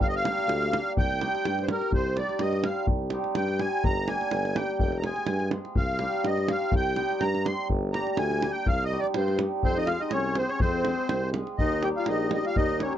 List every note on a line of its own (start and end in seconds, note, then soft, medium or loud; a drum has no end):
0.01 0.29 G1 medium
0.01 0.07 F5 medium
0.01 davul low medium
0.08 0.15 D#5 medium
0.16 0.92 F5 loud
0.24 0.70 G3 medium
0.24 0.41 A#3 medium
0.24 0.41 D4 medium
0.24 0.41 G4 medium
0.24 davul high medium
0.38 davul high soft
0.48 0.76 D2 loud
0.48 davul high medium
0.62 davul high soft
0.72 1.01 G3 medium
0.72 0.89 A#3 soft
0.72 0.89 D4 medium
0.72 0.89 G4 medium
0.72 davul high medium
0.97 1.25 C2 medium
0.97 1.65 G5 loud
0.97 davul low loud
1.11 davul high soft
1.19 1.67 G3 medium
1.19 1.36 C4 medium
1.19 1.37 D#4 medium
1.19 1.37 G4 medium
1.19 davul high medium
1.35 davul high soft
1.45 1.73 G2 medium
1.45 davul high medium
1.59 1.68 C5 soft
1.59 davul high soft
1.68 1.97 G3 medium
1.68 1.85 C4 soft
1.68 1.85 D#4 soft
1.68 1.85 G4 medium
1.68 1.92 A#4 medium
1.68 davul high medium
1.82 davul high soft
1.92 2.21 C2 loud
1.92 2.18 C5 medium
1.92 davul low medium
2.16 2.63 G3 medium
2.16 2.33 C4 medium
2.16 2.33 D#4 medium
2.16 2.33 G4 medium
2.16 2.41 D5 medium
2.16 davul high medium
2.29 davul high soft
2.39 2.68 G2 loud
2.39 2.65 D#5 medium
2.39 davul high medium
2.53 davul high soft
2.64 3.11 G3 medium
2.64 2.81 C4 soft
2.64 2.81 D#4 soft
2.64 2.81 G4 medium
2.64 2.86 F5 medium
2.64 davul high medium
2.87 3.16 C2 medium
2.87 davul low loud
3.10 3.57 G3 medium
3.10 3.29 C4 medium
3.10 3.29 D#4 medium
3.10 3.29 G4 medium
3.10 davul high medium
3.24 davul high soft
3.35 3.65 G2 medium
3.35 3.60 G5 loud
3.35 davul high medium
3.48 davul high soft
3.59 3.89 G3 medium
3.59 3.76 C4 medium
3.59 3.76 D#4 soft
3.59 3.77 G4 medium
3.59 3.84 G#5 medium
3.59 davul high medium
3.84 4.13 G1 loud
3.84 4.09 A#5 loud
3.84 davul low medium
4.07 4.54 G3 medium
4.07 4.24 A#3 medium
4.07 4.25 D4 medium
4.07 4.25 G4 medium
4.07 4.57 G#5 medium
4.07 davul high medium
4.21 davul high soft
4.31 4.60 G1 loud
4.31 davul high medium
4.45 davul high soft
4.56 4.85 G3 medium
4.56 4.72 A#3 soft
4.56 4.73 D4 soft
4.56 4.73 G4 medium
4.56 4.77 G5 loud
4.56 davul high medium
4.79 5.09 F1 loud
4.79 4.98 G5 medium
4.79 davul low medium
4.92 davul high soft
4.97 5.04 A#5 medium
5.04 5.51 G#3 medium
5.04 5.21 C4 medium
5.04 5.21 F4 medium
5.04 5.21 G#4 medium
5.04 5.49 G#5 medium
5.04 davul high medium
5.16 davul high soft
5.27 5.57 G2 loud
5.27 davul high medium
5.40 davul high soft
5.51 5.81 G#3 medium
5.51 5.69 C4 medium
5.51 5.70 F4 medium
5.51 5.70 G#4 medium
5.51 davul high medium
5.65 davul high soft
5.75 6.05 C2 medium
5.75 6.26 F5 medium
5.75 davul low loud
5.99 6.47 G3 medium
5.99 6.17 C4 medium
5.99 6.18 D#4 medium
5.99 6.18 G4 medium
5.99 davul high medium
6.13 davul high soft
6.24 6.53 G2 loud
6.24 6.50 D#5 medium
6.24 davul high medium
6.38 davul high soft
6.48 6.95 G3 medium
6.48 6.66 C4 medium
6.48 6.66 D#4 soft
6.48 6.66 G4 medium
6.48 6.74 F5 medium
6.48 davul high medium
6.72 7.02 C2 medium
6.72 davul low loud
6.76 7.24 G5 loud
6.96 7.44 G3 medium
6.96 7.13 C4 medium
6.96 7.14 D#4 medium
6.96 7.14 G4 medium
6.96 davul high medium
7.10 davul high soft
7.21 7.50 G2 loud
7.21 7.46 A#5 loud
7.21 davul high medium
7.35 davul high soft
7.45 7.75 G3 medium
7.45 7.62 C4 medium
7.45 7.62 D#4 medium
7.45 7.63 G4 medium
7.45 7.68 C6 loud
7.45 davul high medium
7.69 7.98 G1 loud
7.69 davul low medium
7.93 8.41 G3 medium
7.93 8.10 A#3 medium
7.93 8.11 D4 medium
7.93 8.11 G4 medium
7.93 8.10 A#5 loud
7.93 davul high medium
8.07 davul high soft
8.12 8.18 A#5 medium
8.17 8.47 D2 loud
8.17 8.52 G#5 loud
8.17 davul high medium
8.31 davul high soft
8.42 8.72 G3 medium
8.42 8.59 A#3 medium
8.42 8.60 D4 soft
8.42 8.60 G4 medium
8.42 davul high medium
8.51 8.68 G5 medium
8.66 8.96 C2 medium
8.66 8.84 F5 loud
8.66 davul low loud
8.84 9.00 D#5 loud
8.90 9.39 G3 medium
8.90 9.08 C4 medium
8.90 9.08 D#4 medium
8.90 9.09 G4 medium
9.00 9.07 D5 medium
9.00 davul high soft
9.14 9.45 G2 loud
9.14 9.38 C5 medium
9.14 davul high medium
9.28 davul high soft
9.39 9.69 G3 medium
9.39 9.57 C4 medium
9.39 9.57 D#4 medium
9.39 9.57 G4 medium
9.39 davul high medium
9.63 9.94 F2 loud
9.63 9.76 C4 medium
9.63 9.78 C5 loud
9.63 davul low medium
9.76 9.86 D#4 medium
9.76 9.89 D#5 medium
9.76 davul high soft
9.87 10.36 G#3 medium
9.87 10.06 C4 medium
9.87 10.00 F4 medium
9.87 10.06 F4 medium
9.87 10.06 G#4 medium
9.87 10.01 F5 loud
9.87 davul high medium
10.00 10.12 D#4 medium
10.00 10.12 D#5 medium
10.11 10.42 C2 loud
10.11 10.35 C#4 medium
10.11 10.37 C#5 medium
10.11 davul high medium
10.35 10.85 G#3 medium
10.35 10.54 C4 soft
10.35 10.50 C4 medium
10.35 10.55 F4 soft
10.35 10.55 G#4 medium
10.35 10.51 C5 medium
10.35 davul high medium
10.49 10.60 C#4 medium
10.49 10.60 C#5 medium
10.49 davul high soft
10.60 10.91 F2 loud
10.60 11.30 C4 medium
10.60 11.30 C5 medium
10.60 davul low loud
10.85 11.32 G#3 medium
10.85 11.03 C4 medium
10.85 11.03 F4 medium
10.85 11.03 G#4 medium
10.85 davul high medium
11.09 11.40 C2 loud
11.09 davul high medium
11.33 11.64 G#3 medium
11.33 11.51 C4 medium
11.33 11.52 F4 medium
11.33 11.52 G#4 medium
11.33 davul high medium
11.47 davul high soft
11.58 11.89 D#2 loud
11.58 11.82 D#4 medium
11.58 11.84 D#5 medium
11.58 davul low medium
11.72 davul high soft
11.82 12.30 G3 medium
11.82 12.00 A#3 medium
11.82 12.00 D#4 medium
11.82 11.90 G4 medium
11.82 12.00 G4 medium
11.82 11.89 G5 medium
11.82 davul high medium
11.97 12.07 F4 medium
11.97 12.08 F5 medium
12.06 12.37 A#1 loud
12.06 12.31 D#4 medium
12.06 12.31 D#5 medium
12.06 davul high medium
12.31 12.79 G3 medium
12.31 12.49 A#3 medium
12.31 12.49 D#4 medium
12.31 12.44 D#4 medium
12.31 12.49 G4 medium
12.31 12.46 D#5 medium
12.31 davul high medium
12.45 12.55 F4 medium
12.45 12.56 F5 medium
12.45 davul high soft
12.56 12.86 D#2 loud
12.56 12.80 D#4 medium
12.56 12.82 D#5 loud
12.56 davul low medium
12.69 davul high soft
12.80 12.98 G3 medium
12.80 12.98 A#3 medium
12.80 12.94 C#4 medium
12.80 12.98 D#4 medium
12.80 12.98 G4 medium
12.80 12.93 C#5 medium
12.80 davul high medium
12.93 davul high soft